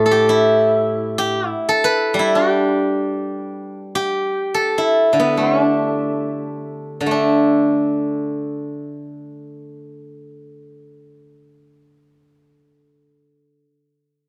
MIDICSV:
0, 0, Header, 1, 2, 480
1, 0, Start_track
1, 0, Tempo, 630915
1, 676, Time_signature, 4, 2, 24, 8
1, 1153, Tempo, 671141
1, 2113, Tempo, 740741
1, 3073, Tempo, 820793
1, 3553, Tempo, 924499
1, 4033, Tempo, 1041667
1, 4993, Tempo, 998336
1, 6433, Tempo, 1075269
1, 7828, End_track
2, 0, Start_track
2, 0, Title_t, "Guzheng"
2, 0, Program_c, 0, 107
2, 0, Note_on_c, 0, 45, 50
2, 0, Note_on_c, 0, 69, 74
2, 43, Note_off_c, 0, 69, 0
2, 43, Note_on_c, 0, 69, 51
2, 87, Note_on_c, 0, 67, 60
2, 220, Note_on_c, 0, 64, 59
2, 896, Note_off_c, 0, 67, 0
2, 899, Note_on_c, 0, 67, 66
2, 1128, Note_off_c, 0, 64, 0
2, 1128, Note_off_c, 0, 67, 0
2, 1128, Note_on_c, 0, 64, 66
2, 1143, Note_off_c, 0, 45, 0
2, 1272, Note_off_c, 0, 69, 0
2, 1275, Note_on_c, 0, 69, 72
2, 1386, Note_on_c, 0, 71, 76
2, 1600, Note_on_c, 0, 55, 51
2, 1633, Note_off_c, 0, 64, 0
2, 1636, Note_on_c, 0, 64, 61
2, 1751, Note_on_c, 0, 62, 34
2, 1858, Note_off_c, 0, 64, 0
2, 1858, Note_on_c, 0, 67, 61
2, 2702, Note_off_c, 0, 62, 0
2, 2776, Note_off_c, 0, 69, 0
2, 2780, Note_off_c, 0, 71, 0
2, 2820, Note_off_c, 0, 67, 0
2, 2822, Note_on_c, 0, 67, 66
2, 3063, Note_off_c, 0, 55, 0
2, 3193, Note_on_c, 0, 69, 60
2, 3330, Note_on_c, 0, 64, 56
2, 3534, Note_on_c, 0, 50, 41
2, 3571, Note_on_c, 0, 59, 49
2, 3664, Note_on_c, 0, 57, 28
2, 3685, Note_off_c, 0, 59, 0
2, 3685, Note_on_c, 0, 60, 49
2, 3794, Note_off_c, 0, 60, 0
2, 3794, Note_on_c, 0, 62, 49
2, 4136, Note_off_c, 0, 67, 0
2, 4334, Note_off_c, 0, 69, 0
2, 4452, Note_off_c, 0, 50, 0
2, 4457, Note_on_c, 0, 50, 35
2, 4478, Note_off_c, 0, 57, 0
2, 4484, Note_on_c, 0, 57, 33
2, 4504, Note_off_c, 0, 62, 0
2, 4506, Note_on_c, 0, 62, 36
2, 4633, Note_off_c, 0, 64, 0
2, 6749, Note_off_c, 0, 62, 0
2, 7129, Note_off_c, 0, 57, 0
2, 7537, Note_off_c, 0, 50, 0
2, 7828, End_track
0, 0, End_of_file